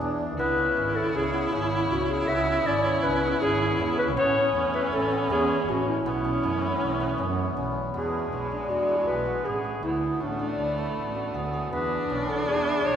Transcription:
Already playing: harmonium E3 D4 G#4, viola D4, hammered dulcimer E4
0.01 double bass E2, hammered dulcimer D4
0.37 double bass C#2, harmonium C#3 B3 E4, hammered dulcimer B3, viola E4, clarinet B4
0.58 hammered dulcimer C#4
0.77 double bass G#1, hammered dulcimer C#4
0.96 hammered dulcimer E4, clarinet A4
1.14 double bass C#2, hammered dulcimer C#4, clarinet G#4
1.34 hammered dulcimer B3
1.52 double bass G#1, hammered dulcimer C#4, clarinet E4
1.90 double bass C#2, hammered dulcimer C#4, clarinet F#4
2.10 clarinet G#4
2.28 double bass C#2, hammered dulcimer B3, clarinet E5
2.47 hammered dulcimer C#4
2.65 double bass G#1, hammered dulcimer C#4, clarinet D5
2.85 hammered dulcimer E4, clarinet C#5
3.03 double bass C#2, hammered dulcimer C#4, clarinet B4
3.23 hammered dulcimer B3
3.41 double bass G#1, hammered dulcimer C#4, clarinet G#4
3.79 double bass E2, hammered dulcimer C#4
3.99 clarinet B4
4.16 double bass A1, harmonium E3 A3 C#4, hammered dulcimer B3, viola C#4, clarinet C#5
4.36 hammered dulcimer C#4
4.55 double bass E2, hammered dulcimer C#4
4.74 hammered dulcimer E4, clarinet B4
4.93 double bass A1, hammered dulcimer C#4, clarinet A4
5.11 hammered dulcimer B3
5.30 double bass E2, hammered dulcimer C#4, clarinet G#4
5.68 double bass A1, hammered dulcimer C#4, clarinet F#4
5.88 clarinet E4
6.05 double bass B1, harmonium E3 B3, hammered dulcimer B3, viola C#4
6.24 hammered dulcimer C#4
6.43 double bass F#2, hammered dulcimer C#4
6.62 hammered dulcimer E4
6.81 double bass B1, hammered dulcimer C#4
7.00 hammered dulcimer B3
7.18 double bass F#2, hammered dulcimer C#4
7.56 double bass B1, hammered dulcimer C#4
7.92 double bass E2, harmonium E3 D4 F#4 G#4, viola G#3, hammered dulcimer B3, clarinet G#4
8.31 double bass B1, hammered dulcimer C#4
8.51 hammered dulcimer D4
8.69 double bass E2, hammered dulcimer D4, clarinet F#4
8.89 hammered dulcimer E4
8.97 clarinet F#4
9.07 double bass B1, clarinet B4
9.26 hammered dulcimer F#4
9.45 double bass A1, clarinet G#4, hammered dulcimer G#4
9.64 hammered dulcimer G#4
9.82 double bass D2, harmonium D3 B3, viola A3, hammered dulcimer B3, clarinet E4
10.20 double bass A1, hammered dulcimer C#4, clarinet D4
10.39 hammered dulcimer D4
10.58 double bass D2, hammered dulcimer D4
10.78 hammered dulcimer E4
10.95 double bass A1
11.15 hammered dulcimer F#4
11.33 double bass D2, hammered dulcimer G#4
11.53 hammered dulcimer G#4
11.71 double bass E2, harmonium E3 D4 G#4, hammered dulcimer B3, viola D4, clarinet B4
12.09 double bass B1, hammered dulcimer C#4
12.29 hammered dulcimer D4, clarinet A4
12.47 double bass E2, hammered dulcimer D4, clarinet G#4
12.67 hammered dulcimer E4
12.76 clarinet G#4
12.85 double bass B1, clarinet C#5

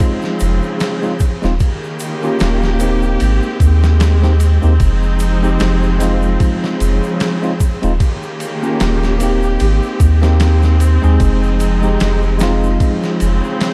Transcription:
Already playing: string section F3 C4, tine electric piano G#3 C4 D#4 F4
0.00 string section C#3, kick, ride
0.22 snare, shaker
0.40 sub bass F1, ride, shaker
0.62 shaker
0.80 snare, ride, shaker
1.02 tine electric piano G#3 C4 D#4 F4, shaker
1.20 kick, ride, shaker
1.42 sub bass D#1, tine electric piano G#3 C4 D#4 F4, snare, shaker
1.59 string section C#3 D#3 A#3 G4, kick, ride, shaker
1.83 shaker
1.99 ride, shaker
2.23 tine electric piano A#3 C#4 F4 G4, shaker
2.39 sub bass D#1, snare, ride, shaker
2.62 snare, shaker
2.79 tine electric piano A#3 C4 D#4, ride, shaker
2.83 tine electric piano G4
3.02 shaker
3.20 sub bass G#1, string section G#3 C4, ride, shaker
3.42 shaker
3.60 sub bass D#2, kick, ride, shaker
3.83 snare, shaker
4.00 snare, ride, shaker
4.22 tine electric piano A#3 C4 D#4 G4, snare, shaker
4.40 ride, shaker
4.62 sub bass D#2, tine electric piano A#3 C4 D#4 G4, shaker
4.80 sub bass F1, string section F3 G#3 D#4, kick, ride, shaker
5.03 shaker
5.19 ride, shaker
5.42 tine electric piano G#3 C4 D#4 G4, shaker
5.59 sub bass F1, snare, ride, shaker
5.83 shaker
5.98 tine electric piano G#3 C4 D#4, snare, ride, shaker
6.03 tine electric piano F4
6.22 shaker
6.40 string section C#3, kick, ride, shaker
6.63 snare, shaker
6.80 sub bass F1, ride, shaker
7.03 shaker
7.20 snare, ride, shaker
7.42 tine electric piano G#3 C4 D#4 F4, shaker
7.60 kick, ride, shaker
7.82 sub bass D#1, tine electric piano G#3 C4 D#4 F4, ride, shaker
8.00 string section C#3 D#3 A#3 G4, kick, ride, shaker
8.23 shaker
8.40 ride, shaker
8.62 tine electric piano A#3 C#4 F4 G4, shaker
8.80 sub bass D#1, snare, ride, shaker
9.03 snare, shaker
9.18 tine electric piano A#3 C4 D#4, ride, shaker
9.23 tine electric piano G4
9.42 shaker
9.60 sub bass G#1, string section G#3 C4, ride, shaker
9.83 shaker
10.00 sub bass D#2, kick, ride, shaker
10.22 tine electric piano A#3 C4 D#4 G4, snare, shaker
10.40 snare, ride, shaker
10.62 snare, shaker
10.80 ride, shaker
11.02 sub bass D#2, tine electric piano G#3 C4 D#4 G#4, shaker
11.19 sub bass F1, string section F3 G#3 D#4, kick, ride, shaker
11.43 shaker
11.60 ride, shaker
11.82 tine electric piano G#3 C4 D#4 G4, shaker
12.00 sub bass F1, snare, ride, shaker
12.22 shaker
12.38 tine electric piano G#3 C4 D#4, snare, ride, shaker
12.43 tine electric piano F4
12.63 shaker
12.79 string section C#3 C4, kick, ride, shaker
13.03 snare, shaker
13.20 sub bass F1, ride, shaker
13.44 shaker
13.61 snare, ride, shaker

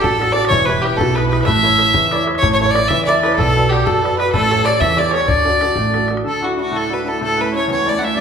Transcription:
Already playing: upright piano D4 F#4 A4
0.01 upright bass A1, upright piano F#3, accordion A4, fiddle A4, five-string banjo A4, bodhran
0.19 upright piano D4 F#4 A4, bodhran
0.32 upright piano D4 F#4 A4, accordion D5, fiddle D5, five-string banjo D5
0.45 fiddle C#5, bodhran
0.50 upright bass E1, upright piano E3, accordion C#5, five-string banjo C#5, bodhran
0.65 upright piano E4 G4 B4, fiddle B4, accordion B4
0.70 five-string banjo B4, bodhran
0.82 upright piano E4 G4 B4, five-string banjo G4, accordion G4, fiddle G4, bodhran
0.97 upright bass B1, upright piano B2, five-string banjo A4, fiddle A4, accordion A4
1.01 bodhran
1.15 upright piano E4 G4 B4, fiddle B4, five-string banjo B4, accordion B4, bodhran
1.29 upright piano E4 G4 B4, fiddle B4, five-string banjo B4, accordion B4, bodhran
1.41 fiddle E5, bodhran
1.45 upright bass A1, upright piano A3, five-string banjo E5, accordion E5, bodhran
1.63 upright piano E4 A4 C#5, bodhran
1.78 upright piano E4 A4 C#5, bodhran
1.94 upright bass E2, upright piano E3, bodhran
2.11 upright piano E4 A4 C#5, five-string banjo D5, bodhran
2.26 upright piano E4 A4 C#5, bodhran
2.35 fiddle C#5, bodhran
2.42 upright bass A1, upright piano A3, accordion C#5, five-string banjo C#5, bodhran
2.53 fiddle C#5
2.60 upright piano E4 A4 C#5, fiddle C#5, bodhran
2.65 accordion C#5, five-string banjo C#5
2.71 fiddle D5, accordion D5, five-string banjo D5
2.75 upright piano E4 A4 C#5, bodhran
2.88 upright bass E2, upright piano E3, fiddle E5, accordion E5, five-string banjo E5, bodhran
3.05 upright piano E4 A4, fiddle D5, accordion D5, bodhran
3.09 five-string banjo D5, upright piano E5
3.21 upright piano E4 A4 C#5, fiddle B4, bodhran
3.32 fiddle A4, bodhran
3.37 upright bass B1, upright piano B3, accordion A4, five-string banjo A4, bodhran
3.56 upright piano F#4 B4 D5, bodhran
3.69 upright piano F#4 B4 D5, fiddle G4, accordion G4, bodhran
3.73 five-string banjo G4
3.84 upright bass F#2, upright piano F#3, accordion A4, fiddle A4, five-string banjo A4, bodhran
4.02 upright piano F#4 B4 D5, bodhran
4.16 upright piano F#4 B4 D5, accordion B4, five-string banjo B4, fiddle B4, bodhran
4.32 upright bass A1, upright piano A3, fiddle A4, accordion A4, five-string banjo A4, bodhran
4.50 upright piano G4 A4 C#5, bodhran
4.65 upright piano G4 A4 C#5, five-string banjo D5, fiddle D5, accordion D5, bodhran
4.80 upright bass E2, upright piano E3, accordion E5, fiddle E5, five-string banjo E5, bodhran
4.97 upright piano G4 A4 C#5, five-string banjo D5, accordion D5, fiddle D5, bodhran
5.09 upright piano G4 A4, five-string banjo C#5 D5, accordion C#5
5.14 upright piano C#5, fiddle C#5, bodhran
5.20 bodhran
5.27 upright bass D2, upright piano D3, five-string banjo D5, fiddle D5, accordion D5, bodhran
5.45 upright piano D4 F#4 A4, bodhran
5.61 upright piano D4 F#4 A4, bodhran
5.76 upright bass A1, upright piano A3, bodhran
5.94 upright piano D4 F#4 A4, bodhran
6.08 upright piano D4 F#4 A4, bodhran
6.17 bodhran
6.24 cello D2, upright piano D3, accordion A4, fiddle A4
6.41 upright piano D4 E4 F#4, accordion F#4, fiddle F#4
6.55 upright piano D4 E4 F#4, accordion F#4
6.61 fiddle F#4
6.71 upright piano A2, accordion A4
6.76 fiddle A4
6.89 upright piano D4 E4 F#4
6.93 fiddle B4
7.04 upright piano D4 E4 F#4, accordion A4, fiddle A4
7.18 upright piano A2, accordion A4
7.24 fiddle A4
7.36 upright piano A3 C#4 E4, accordion B4
7.41 fiddle B4
7.52 upright piano A3 C#4 E4, accordion C#5
7.56 fiddle C#5
7.66 upright piano E2, accordion C#5
7.71 fiddle C#5
7.85 upright piano A3 C#4 E4, accordion D5, fiddle D5
7.98 upright piano A3 C#4 E4, accordion E5, fiddle F#5
8.04 fiddle E5
8.14 upright piano G2, accordion D5, fiddle D5

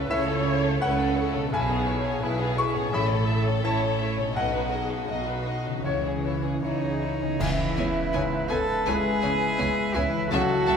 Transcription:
Already playing: grand piano C#2 C#3 E5 F#5, harp C#3 A3 E4 A4, violin section A3, viola section B4
0.09 double bass section C#2, cello section C#3, grand piano A3 E4 A4 E5, violin section C#4 E4 C#5, viola section C#5
0.27 violin section A3 C#4 A4
0.44 violin section C#4 E4 C#5
0.62 violin section A3 C#4 A4
0.80 double bass section C#2, cello section C#3, violin section C#4 E4 C#5, viola section B4, grand piano F#5
0.98 violin section A3 C#4 A4
1.15 violin section C#4 E4 C#5, viola section A4
1.33 harp B2, violin section A3 C#4 A4
1.39 harp B3
1.43 harp E4
1.48 harp G#4, violin section B4
1.52 grand piano B1 G#5, double bass section B1, cello section B2, violin section E4, viola section G#4
1.69 violin section B3 G#4
1.86 violin section E4 B4, viola section C#5
2.04 violin section B3 G#4
2.22 double bass section B1, cello section B2, violin section E4 B4, grand piano E4 G#4, viola section B4
2.39 violin section B3 G#4
2.57 violin section E4 B4, viola section G#4, grand piano C#6
2.75 harp A2, violin section B3 G#4
2.79 harp C#4
2.84 harp E4
2.88 double bass section A1, cello section A2, harp C#5, violin section E5
2.93 grand piano A1 B5, violin section A3 E4, viola section A4
3.09 violin section C#4 A4 C#5
3.26 violin section A3 E4 E5
3.45 violin section C#4 A4 C#5
3.62 double bass section A1, cello section A2, violin section A3 E4 E5, grand piano E4 C#5 A5, viola section C#5
3.81 violin section C#4 A4 C#5
3.98 violin section A3 E4 E5, viola section C#5
4.16 harp B2, violin section C#4 A4 C#5
4.22 harp B3
4.26 harp D#4
4.31 harp D#5
4.35 double bass section B1, grand piano B1 F#5, cello section B2, violin section D#4 F#4 D#5, viola section B4
4.51 violin section D#4 F#4 B4
4.71 violin section D#4 F#4 D#5, viola section G#4
4.90 violin section D#4 F#4 B4
5.08 double bass section B1, cello section B2, grand piano D#4 D#5, violin section D#4 F#4 D#5, viola section F#4
5.26 violin section D#4 F#4 B4
5.45 violin section D#4 F#4 D#5
5.66 harp C#3, violin section D#4 F#4 B4
5.71 harp E3
5.76 harp C#4
5.80 grand piano C#2, harp C#5
5.84 double bass section C#2, cello section C#3, viola section E3, violin section E4 C#5, grand piano C#5
6.04 violin section C#4 G#4
6.24 violin section E4 C#5
6.43 violin section C#4 G#4
6.61 double bass section C#2, cello section C#3, grand piano E3 C#5, cello D#4, french horn section D#4, violin section E4 C#5, flute section D#5
6.81 violin section C#4 G#4
7.01 violin section E4 C#5
7.21 harp C#3, violin section C#4 G#4
7.26 harp B3
7.31 harp E4
7.36 harp B4, violin section C#5
7.40 grand piano C#2, double bass section C#2, cello section C#3, french horn section E3, viola section B3, cello E4, cor anglais B4, flute section E5, clarinet E5, violin section G#5, concert bass drum, crash
7.77 double bass section C#2, cello section C#3, viola section B3, violin section C#5 G#5
8.14 double bass section C#2, grand piano G#2, cello section C#3, viola section B3, violin section C#5 G#5
8.49 double bass section C#2, cello section C#3, viola section B3, french horn section A4, cello A4, violin section C#5 G#5, flute section A5
8.86 double bass section C#2, cello section C#3, french horn section G#3, grand piano G#3 E4 B4, viola section B3, cello G#4, violin section C#5 G#5, flute section G#5
9.22 double bass section C#2, cello section C#3, viola section B3, violin section C#5 G#5
9.58 double bass section C#2, cello section C#3, viola section B3, violin section C#5 G#5
9.95 double bass section C#2, cello section C#3, french horn section E3, viola section B3, cello E4, violin section C#5 G#5, flute section E5
10.14 harp C#3
10.18 harp A3
10.22 harp E4
10.27 harp A4
10.31 grand piano C#2, double bass section C#2, cello section C#3, french horn section F#3, viola section A3, cello F#4, violin section E5 A5, flute section F#5, cor anglais A5
10.66 double bass section C#2, cello section C#3, viola section A3, violin section E5 A5

